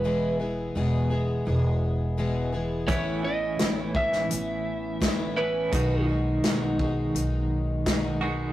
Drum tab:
HH |----------------|x---x---x---x---|x---x---x---x---|
SD |----------------|----o--o----o---|----o-------o---|
BD |----------------|o-----o-----o---|o-----o-----o---|